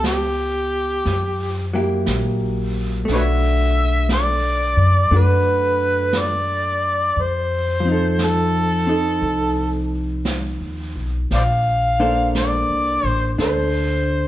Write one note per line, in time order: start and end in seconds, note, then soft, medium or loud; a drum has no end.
0.00 1.02 C#2 medium
0.00 1.05 B3 soft
0.00 1.08 E4 soft
0.00 1.11 G4 soft
0.00 brush sweep soft
0.00 snare soft
0.00 hi-hat pedal soft
0.06 1.70 G4 medium
1.05 2.03 F#2 medium
1.05 brush sweep soft
1.05 snare soft
1.73 3.05 F#3 soft
1.73 3.09 A#3 soft
1.73 3.10 E4 soft
1.73 3.10 G4 soft
2.06 3.04 A#1 medium
2.06 brush sweep soft
2.06 snare soft
2.06 hi-hat pedal soft
3.05 4.73 B1 medium
3.05 5.10 A3 soft
3.05 brush sweep soft
3.05 snare soft
3.11 5.11 D4 soft
3.11 3.20 B4 medium
3.11 3.22 C#5 medium
3.11 4.08 E5 loud
3.16 5.12 F#4 soft
4.09 brush sweep soft
4.09 snare soft
4.09 hi-hat pedal soft
4.14 5.19 D5 medium
4.77 5.09 F#2 medium
5.10 7.12 F#2 medium
5.10 7.16 A3 soft
5.10 7.17 D4 soft
5.10 7.18 F#4 soft
5.10 brush sweep soft
5.18 6.21 B4 medium
6.13 brush sweep soft
6.13 snare soft
6.13 hi-hat pedal soft
6.19 7.24 D5 medium
7.16 9.18 F2 medium
7.16 brush sweep soft
7.22 8.26 C5 medium
7.80 11.29 F3 soft
7.85 8.86 C4 soft
7.85 8.88 D#4 soft
7.92 8.89 A4 soft
8.19 brush sweep soft
8.19 snare soft
8.19 hi-hat pedal soft
8.24 9.93 A4 medium
8.87 11.30 C4 soft
8.87 11.32 D#4 soft
8.87 11.32 A4 soft
9.21 10.57 C2 medium
9.21 brush sweep soft
10.25 brush sweep soft
10.25 snare soft
10.25 hi-hat pedal soft
10.61 10.93 D#2 soft
10.96 11.28 B1 medium
11.31 12.66 A#1 medium
11.31 11.42 C5 medium
11.31 11.42 D5 medium
11.31 12.33 F5 medium
11.31 brush sweep soft
11.31 snare soft
12.00 14.28 A#3 soft
12.00 13.37 D4 soft
12.00 13.39 A4 soft
12.00 13.40 C5 soft
12.35 13.08 D5 medium
12.35 brush sweep soft
12.35 snare soft
12.35 hi-hat pedal soft
12.69 13.02 C2 soft
13.03 13.36 A1 medium
13.08 13.37 C5 medium
13.38 14.28 D2 medium
13.38 14.28 D4 soft
13.38 14.28 A4 soft
13.38 14.28 C5 soft
13.38 brush sweep soft
13.38 snare soft
13.42 14.28 C5 medium